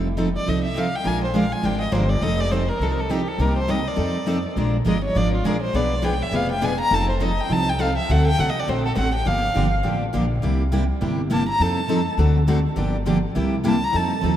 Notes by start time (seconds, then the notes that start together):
Already playing: F1
0.17 F3 C4 D#4 A4
0.36 D5
0.47 C2 F3 C4 D#4 A4 D#5
0.64 E5
0.76 F3 C4 D#4 A4 F5
0.96 G5
1.04 A#1 F3 G#3 D4 F4 A#4 G#5
1.24 C5
1.34 F3 G#3 D4 F4 A#4 F5
1.52 G#5
1.63 G#1 F3 G#3 D4 F4 A#4 G5
1.81 D#5
1.92 G1 F3 G#3 D4 F4 A#4 C5
2.09 D5
2.21 F1 F3 C4 D#4 A4 D#5
2.40 D5
2.50 F3 C4 D#4 A4 C5
2.69 A#4
2.79 C2 F3 C4 D#4 A4
2.92 A#4
3.00 A4
3.09 F3 C4 D#4 G4 A4
3.28 A4
3.38 C2 C3 G3 A#3 D#4 G4 A#4
3.57 C5
3.68 C3 G3 A#3 D#4 G4 D#5
3.88 D5
3.96 F2 F3 C4 D#4 A4
4.26 F3 C4 D#4 A4
4.56 A#1 F3 G#3 D4 F4 A#4
4.86 G1 F3 G#3 D4 F4 A#4 D#5
5.04 C#5
5.15 G#1 F3 G#3 D4 F4 A#4 D5
5.34 F4
5.45 A#1 F3 G#3 D4 F4 G#4 A#4
5.62 C5
5.74 B1 B2 F3 B3 D4 G#4 B4 D5
6.02 B2 F3 B3 D4 G#4 B4 G5
6.22 E5
6.32 F1 B2 F3 B3 D4 G#4 B4 F5
6.51 G5
6.61 B2 F3 B3 D4 G#4 B4 G#5
6.81 A#5
6.90 F1 F3 C4 D#4 A4 A5
7.10 C5
7.20 F3 C4 D#4 A4 D#5
7.40 G5
7.50 C2 F3 C4 D#4 A4 A5
7.69 G5
7.79 F3 C4 D#4 A4 F5
7.97 E5
8.09 D2 D3 A3 C4 F#4 A4 F#5
8.27 G5
8.38 C2 D3 A3 C4 F#4 A4 F#5
8.50 D#5
8.59 D5
8.68 A#1 D3 A3 C4 F#4 A4 C5
8.85 A4
8.95 A1 D3 A3 C4 F#4 A4 F#5
9.15 G5
9.25 G1 D3 F3 A#3 D4 G4 F5
9.54 G1 D3 F3 A#3 D4 G4
9.83 A1 D3 F3 A#3 D4 G4
10.13 A#1 D3 F3 A#3 D4 G4
10.42 C2 C3 G3 A#3 E4 G4
10.72 C3 G3 A#3 E4 G4
11.01 G1 C3 G3 A#3 E4 G4
11.31 C3 G3 A#3 E4 G4 A5
11.49 A#5
11.60 F2 F3 C4 D#4 A4 A5
11.89 F3 C4 D#4 A4
12.18 D2 D3 A3 C4 F#4 A4
12.48 D3 A3 C4 F#4 A4
12.76 G1 D3 F3 A#3 D4 G4
13.06 D3 F3 A#3 D4 G4
13.35 C2 C3 G3 A#3 E4 G4
13.64 C3 G3 A#3 E4 G4
13.68 A5
13.84 A#5
13.93 F2 F3 C4 D#4 A4 A5
14.23 D#2 F3 C4 D#4 A4